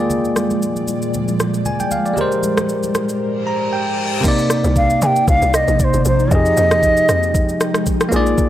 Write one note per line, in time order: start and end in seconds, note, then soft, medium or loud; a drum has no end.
0.00 2.15 A#2 medium
0.00 2.15 F3 medium
0.00 2.13 G#3 medium
0.00 1.86 A#3 medium
0.00 1.87 F4 medium
0.00 1.88 G#4 medium
0.00 1.64 D5 medium
0.00 2.15 D5 medium
0.10 low conga medium
0.10 shaker medium
0.25 shaker soft
0.36 cross-stick medium
0.36 high conga medium
0.36 shaker medium
0.51 high conga medium
0.51 shaker soft
0.62 shaker medium
0.76 high conga soft
0.76 shaker medium
0.88 high conga medium
0.88 shaker medium
1.02 shaker medium
1.14 low conga medium
1.14 shaker medium
1.28 high conga medium
1.28 shaker medium
1.40 cross-stick medium
1.40 high conga medium
1.40 shaker medium
1.54 shaker soft
1.65 1.79 G#5 medium
1.65 low conga medium
1.65 shaker medium
1.80 1.91 G5 medium
1.80 high conga medium
1.80 shaker medium
1.91 2.05 F5 medium
1.91 low conga medium
1.91 shaker loud
2.06 2.30 D5 medium
2.06 shaker soft
2.13 4.18 G#3 medium
2.13 4.20 G4 medium
2.13 4.22 G4 medium
2.13 low conga medium
2.13 shaker medium
2.18 4.22 G#2 medium
2.18 4.22 A#4 medium
2.18 4.21 A#4 medium
2.18 4.22 C5 medium
2.32 shaker soft
2.43 high conga medium
2.43 shaker loud
2.57 cross-stick loud
2.57 high conga medium
2.57 shaker medium
2.69 shaker medium
2.83 high conga soft
2.83 shaker medium
2.95 cross-stick medium
2.95 high conga medium
2.95 shaker medium
3.09 shaker medium
3.21 reverse cymbal medium
3.47 3.71 A#5 medium
3.73 4.21 G5 medium
4.21 6.25 C3 medium
4.21 6.29 C3 medium
4.21 6.27 A#3 medium
4.21 6.29 A#3 medium
4.21 8.08 D#4 medium
4.21 6.29 D5 medium
4.21 kick loud
4.21 crash loud
4.21 shaker medium
4.26 6.28 D#4 medium
4.26 6.29 D5 medium
4.39 shaker soft
4.50 cross-stick medium
4.50 shaker loud
4.64 4.97 C2 loud
4.64 shaker medium
4.76 5.01 F5 loud
4.76 kick medium
4.76 shaker medium
4.90 shaker medium
5.02 5.24 C3 loud
5.02 5.07 G#5 loud
5.02 shaker loud
5.06 5.27 G5 loud
5.16 shaker medium
5.28 5.40 C2 loud
5.28 5.56 F5 loud
5.28 kick loud
5.28 shaker medium
5.42 5.64 C2 medium
5.42 shaker medium
5.54 5.82 D#5 loud
5.54 cross-stick medium
5.54 shaker medium
5.68 5.78 A#1 medium
5.68 shaker medium
5.79 5.85 D5 medium
5.79 kick medium
5.79 shaker medium
5.84 6.06 C5 loud
5.94 6.04 G1 medium
5.94 shaker medium
6.05 6.28 A#1 loud
6.05 6.34 C5 medium
6.05 shaker loud
6.20 shaker soft
6.28 6.54 F2 loud
6.28 8.07 F3 medium
6.28 8.08 D#4 medium
6.28 kick loud
6.28 shaker medium
6.32 8.11 F3 medium
6.32 8.11 G#3 medium
6.32 8.09 G4 medium
6.32 8.10 G#4 medium
6.32 7.87 D#5 loud
6.32 8.11 G5 medium
6.46 shaker soft
6.57 7.02 F2 loud
6.57 shaker loud
6.71 cross-stick loud
6.71 shaker medium
6.83 kick medium
6.83 shaker medium
6.97 shaker medium
7.09 7.54 F2 medium
7.09 cross-stick medium
7.09 shaker loud
7.23 shaker medium
7.35 kick loud
7.35 shaker medium
7.49 shaker medium
7.61 cross-stick loud
7.61 shaker medium
7.74 cross-stick loud
7.74 shaker medium
7.86 kick medium
7.86 shaker medium
8.01 cross-stick loud
8.01 shaker medium
8.09 8.35 A#1 loud
8.09 8.49 G#3 medium
8.09 8.49 A#3 medium
8.09 8.49 D4 loud
8.09 8.49 F4 medium
8.09 shaker loud
8.14 8.49 G#4 medium
8.14 8.49 D5 medium
8.26 shaker soft
8.38 kick loud
8.38 shaker medium